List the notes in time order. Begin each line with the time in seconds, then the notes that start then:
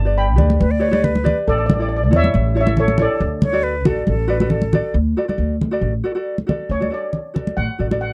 Already playing: G1 D5 A5
0.05 G4 B4 D5
0.18 G5 B5
0.36 D2 G4 B4 D5, low conga
0.50 high conga
0.60 D2 B4, high conga
0.71 D5
0.79 G4 B4 C#5 D5
0.91 G4 B4 D5, high conga
1.04 B4, low conga
1.15 high conga
1.24 G4 B4 D5, low conga
1.48 A1 A4 D5
1.58 D5
1.66 D5, high conga, low conga
1.74 D5
1.79 E4 A4 D5
1.89 D5
1.96 D5
2.04 D5
2.11 E2 E4 A4 D5, low conga
2.16 C#5 E5
2.24 high conga
2.34 A1, high conga
2.55 E4 A4 C#5
2.60 C#5 E5
2.66 E4 A4 C#5, high conga
2.77 A4 C#5, low conga
2.88 high conga
2.98 E4 A4 C#5 D5, low conga
3.03 A4
3.20 D2
3.42 C#5, high conga, low conga
3.52 F#4 A4 D5
3.63 B4
3.85 A1 F#4 A4 D5, low conga
4.07 A1 A4, high conga
4.28 F#4 A4 B4 D5
4.40 F#4 A4 D5, high conga
4.50 A4, low conga
4.62 high conga
4.72 F#4 A4 D5, low conga
4.94 D2
5.17 F#4 A4 D5
5.28 F#4 A4 D5, high conga
5.38 D2
5.61 high conga, low conga
5.71 F#4 A4 D5
5.81 A1
6.04 F#4 A4 D5
6.15 F#4 A4 D5
6.38 high conga
6.47 F#4 A4 D5, high conga, low conga
6.69 D2 C#5
6.80 F#4 A4 D5, high conga
6.90 F#4 A4 D5
6.94 D5
7.13 low conga
7.34 F#4 A4 D5, low conga
7.47 high conga
7.57 A1 F#5
7.79 A1 F#4 A4 D5
7.91 F#4 A4 D5, high conga
8.01 F#5